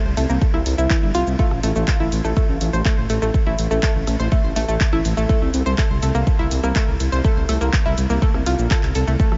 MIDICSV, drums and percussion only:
0, 0, Header, 1, 2, 480
1, 0, Start_track
1, 0, Tempo, 487805
1, 1370, Time_signature, 4, 2, 24, 8
1, 9225, End_track
2, 0, Start_track
2, 0, Title_t, "Drums"
2, 170, Note_on_c, 9, 46, 108
2, 170, Note_on_c, 9, 82, 74
2, 268, Note_off_c, 9, 46, 0
2, 268, Note_off_c, 9, 82, 0
2, 291, Note_on_c, 9, 82, 42
2, 389, Note_off_c, 9, 82, 0
2, 409, Note_on_c, 9, 36, 125
2, 410, Note_on_c, 9, 82, 33
2, 507, Note_off_c, 9, 36, 0
2, 508, Note_off_c, 9, 82, 0
2, 530, Note_on_c, 9, 37, 48
2, 629, Note_off_c, 9, 37, 0
2, 649, Note_on_c, 9, 46, 112
2, 649, Note_on_c, 9, 82, 76
2, 748, Note_off_c, 9, 46, 0
2, 748, Note_off_c, 9, 82, 0
2, 770, Note_on_c, 9, 82, 43
2, 869, Note_off_c, 9, 82, 0
2, 889, Note_on_c, 9, 36, 121
2, 889, Note_on_c, 9, 39, 116
2, 889, Note_on_c, 9, 82, 32
2, 987, Note_off_c, 9, 36, 0
2, 987, Note_off_c, 9, 39, 0
2, 987, Note_off_c, 9, 82, 0
2, 1128, Note_on_c, 9, 46, 115
2, 1128, Note_on_c, 9, 82, 77
2, 1227, Note_off_c, 9, 46, 0
2, 1227, Note_off_c, 9, 82, 0
2, 1249, Note_on_c, 9, 82, 44
2, 1347, Note_off_c, 9, 82, 0
2, 1368, Note_on_c, 9, 82, 31
2, 1369, Note_on_c, 9, 36, 121
2, 1466, Note_off_c, 9, 82, 0
2, 1467, Note_off_c, 9, 36, 0
2, 1488, Note_on_c, 9, 37, 53
2, 1587, Note_off_c, 9, 37, 0
2, 1608, Note_on_c, 9, 46, 109
2, 1608, Note_on_c, 9, 82, 74
2, 1706, Note_off_c, 9, 46, 0
2, 1706, Note_off_c, 9, 82, 0
2, 1728, Note_on_c, 9, 82, 41
2, 1827, Note_off_c, 9, 82, 0
2, 1848, Note_on_c, 9, 36, 118
2, 1848, Note_on_c, 9, 39, 113
2, 1848, Note_on_c, 9, 82, 31
2, 1946, Note_off_c, 9, 39, 0
2, 1946, Note_off_c, 9, 82, 0
2, 1947, Note_off_c, 9, 36, 0
2, 2088, Note_on_c, 9, 46, 102
2, 2088, Note_on_c, 9, 82, 74
2, 2186, Note_off_c, 9, 46, 0
2, 2186, Note_off_c, 9, 82, 0
2, 2209, Note_on_c, 9, 82, 44
2, 2307, Note_off_c, 9, 82, 0
2, 2328, Note_on_c, 9, 36, 120
2, 2328, Note_on_c, 9, 37, 53
2, 2328, Note_on_c, 9, 82, 33
2, 2427, Note_off_c, 9, 36, 0
2, 2427, Note_off_c, 9, 37, 0
2, 2427, Note_off_c, 9, 82, 0
2, 2569, Note_on_c, 9, 46, 108
2, 2569, Note_on_c, 9, 82, 77
2, 2667, Note_off_c, 9, 46, 0
2, 2667, Note_off_c, 9, 82, 0
2, 2689, Note_on_c, 9, 82, 43
2, 2787, Note_off_c, 9, 82, 0
2, 2808, Note_on_c, 9, 39, 113
2, 2808, Note_on_c, 9, 82, 32
2, 2809, Note_on_c, 9, 36, 118
2, 2907, Note_off_c, 9, 36, 0
2, 2907, Note_off_c, 9, 39, 0
2, 2907, Note_off_c, 9, 82, 0
2, 3048, Note_on_c, 9, 46, 105
2, 3048, Note_on_c, 9, 82, 78
2, 3146, Note_off_c, 9, 46, 0
2, 3146, Note_off_c, 9, 82, 0
2, 3169, Note_on_c, 9, 37, 53
2, 3169, Note_on_c, 9, 82, 44
2, 3268, Note_off_c, 9, 37, 0
2, 3268, Note_off_c, 9, 82, 0
2, 3289, Note_on_c, 9, 36, 114
2, 3289, Note_on_c, 9, 82, 32
2, 3387, Note_off_c, 9, 36, 0
2, 3387, Note_off_c, 9, 82, 0
2, 3529, Note_on_c, 9, 46, 105
2, 3529, Note_on_c, 9, 82, 77
2, 3627, Note_off_c, 9, 46, 0
2, 3627, Note_off_c, 9, 82, 0
2, 3650, Note_on_c, 9, 82, 43
2, 3748, Note_off_c, 9, 82, 0
2, 3768, Note_on_c, 9, 39, 115
2, 3768, Note_on_c, 9, 82, 32
2, 3769, Note_on_c, 9, 36, 119
2, 3867, Note_off_c, 9, 39, 0
2, 3867, Note_off_c, 9, 82, 0
2, 3868, Note_off_c, 9, 36, 0
2, 4008, Note_on_c, 9, 37, 54
2, 4008, Note_on_c, 9, 46, 100
2, 4008, Note_on_c, 9, 82, 79
2, 4107, Note_off_c, 9, 37, 0
2, 4107, Note_off_c, 9, 46, 0
2, 4107, Note_off_c, 9, 82, 0
2, 4129, Note_on_c, 9, 82, 46
2, 4228, Note_off_c, 9, 82, 0
2, 4249, Note_on_c, 9, 36, 115
2, 4249, Note_on_c, 9, 82, 36
2, 4347, Note_off_c, 9, 82, 0
2, 4348, Note_off_c, 9, 36, 0
2, 4490, Note_on_c, 9, 46, 105
2, 4490, Note_on_c, 9, 82, 81
2, 4588, Note_off_c, 9, 46, 0
2, 4588, Note_off_c, 9, 82, 0
2, 4611, Note_on_c, 9, 82, 45
2, 4709, Note_off_c, 9, 82, 0
2, 4729, Note_on_c, 9, 36, 114
2, 4730, Note_on_c, 9, 39, 115
2, 4730, Note_on_c, 9, 82, 33
2, 4828, Note_off_c, 9, 36, 0
2, 4828, Note_off_c, 9, 39, 0
2, 4828, Note_off_c, 9, 82, 0
2, 4851, Note_on_c, 9, 37, 55
2, 4949, Note_off_c, 9, 37, 0
2, 4970, Note_on_c, 9, 46, 106
2, 4970, Note_on_c, 9, 82, 79
2, 5068, Note_off_c, 9, 46, 0
2, 5068, Note_off_c, 9, 82, 0
2, 5090, Note_on_c, 9, 82, 46
2, 5189, Note_off_c, 9, 82, 0
2, 5209, Note_on_c, 9, 36, 113
2, 5210, Note_on_c, 9, 82, 35
2, 5308, Note_off_c, 9, 36, 0
2, 5308, Note_off_c, 9, 82, 0
2, 5450, Note_on_c, 9, 46, 99
2, 5450, Note_on_c, 9, 82, 80
2, 5548, Note_off_c, 9, 46, 0
2, 5548, Note_off_c, 9, 82, 0
2, 5570, Note_on_c, 9, 82, 46
2, 5668, Note_off_c, 9, 82, 0
2, 5689, Note_on_c, 9, 36, 119
2, 5689, Note_on_c, 9, 37, 56
2, 5689, Note_on_c, 9, 39, 115
2, 5689, Note_on_c, 9, 82, 34
2, 5787, Note_off_c, 9, 37, 0
2, 5787, Note_off_c, 9, 39, 0
2, 5787, Note_off_c, 9, 82, 0
2, 5788, Note_off_c, 9, 36, 0
2, 5929, Note_on_c, 9, 46, 101
2, 5929, Note_on_c, 9, 82, 77
2, 6027, Note_off_c, 9, 46, 0
2, 6027, Note_off_c, 9, 82, 0
2, 6050, Note_on_c, 9, 82, 48
2, 6148, Note_off_c, 9, 82, 0
2, 6169, Note_on_c, 9, 36, 116
2, 6169, Note_on_c, 9, 82, 36
2, 6267, Note_off_c, 9, 82, 0
2, 6268, Note_off_c, 9, 36, 0
2, 6409, Note_on_c, 9, 46, 101
2, 6409, Note_on_c, 9, 82, 80
2, 6507, Note_off_c, 9, 46, 0
2, 6507, Note_off_c, 9, 82, 0
2, 6530, Note_on_c, 9, 37, 57
2, 6530, Note_on_c, 9, 82, 46
2, 6628, Note_off_c, 9, 37, 0
2, 6628, Note_off_c, 9, 82, 0
2, 6649, Note_on_c, 9, 36, 115
2, 6649, Note_on_c, 9, 39, 114
2, 6649, Note_on_c, 9, 82, 34
2, 6747, Note_off_c, 9, 39, 0
2, 6747, Note_off_c, 9, 82, 0
2, 6748, Note_off_c, 9, 36, 0
2, 6890, Note_on_c, 9, 46, 105
2, 6890, Note_on_c, 9, 82, 83
2, 6988, Note_off_c, 9, 46, 0
2, 6988, Note_off_c, 9, 82, 0
2, 7010, Note_on_c, 9, 82, 46
2, 7108, Note_off_c, 9, 82, 0
2, 7129, Note_on_c, 9, 36, 117
2, 7129, Note_on_c, 9, 82, 34
2, 7228, Note_off_c, 9, 36, 0
2, 7228, Note_off_c, 9, 82, 0
2, 7369, Note_on_c, 9, 37, 53
2, 7369, Note_on_c, 9, 46, 102
2, 7369, Note_on_c, 9, 82, 82
2, 7468, Note_off_c, 9, 37, 0
2, 7468, Note_off_c, 9, 46, 0
2, 7468, Note_off_c, 9, 82, 0
2, 7490, Note_on_c, 9, 82, 46
2, 7589, Note_off_c, 9, 82, 0
2, 7609, Note_on_c, 9, 36, 116
2, 7610, Note_on_c, 9, 39, 118
2, 7610, Note_on_c, 9, 82, 35
2, 7708, Note_off_c, 9, 36, 0
2, 7708, Note_off_c, 9, 39, 0
2, 7708, Note_off_c, 9, 82, 0
2, 7849, Note_on_c, 9, 46, 101
2, 7849, Note_on_c, 9, 82, 84
2, 7948, Note_off_c, 9, 46, 0
2, 7948, Note_off_c, 9, 82, 0
2, 7970, Note_on_c, 9, 82, 48
2, 8068, Note_off_c, 9, 82, 0
2, 8089, Note_on_c, 9, 36, 112
2, 8089, Note_on_c, 9, 82, 37
2, 8187, Note_off_c, 9, 82, 0
2, 8188, Note_off_c, 9, 36, 0
2, 8210, Note_on_c, 9, 37, 53
2, 8308, Note_off_c, 9, 37, 0
2, 8329, Note_on_c, 9, 46, 102
2, 8329, Note_on_c, 9, 82, 84
2, 8427, Note_off_c, 9, 46, 0
2, 8427, Note_off_c, 9, 82, 0
2, 8450, Note_on_c, 9, 82, 46
2, 8548, Note_off_c, 9, 82, 0
2, 8569, Note_on_c, 9, 36, 118
2, 8569, Note_on_c, 9, 39, 121
2, 8569, Note_on_c, 9, 82, 36
2, 8667, Note_off_c, 9, 39, 0
2, 8667, Note_off_c, 9, 82, 0
2, 8668, Note_off_c, 9, 36, 0
2, 8690, Note_on_c, 9, 39, 38
2, 8788, Note_off_c, 9, 39, 0
2, 8808, Note_on_c, 9, 46, 106
2, 8808, Note_on_c, 9, 82, 85
2, 8906, Note_off_c, 9, 46, 0
2, 8906, Note_off_c, 9, 82, 0
2, 8929, Note_on_c, 9, 82, 48
2, 9027, Note_off_c, 9, 82, 0
2, 9048, Note_on_c, 9, 82, 36
2, 9049, Note_on_c, 9, 36, 118
2, 9147, Note_off_c, 9, 36, 0
2, 9147, Note_off_c, 9, 82, 0
2, 9169, Note_on_c, 9, 37, 55
2, 9225, Note_off_c, 9, 37, 0
2, 9225, End_track
0, 0, End_of_file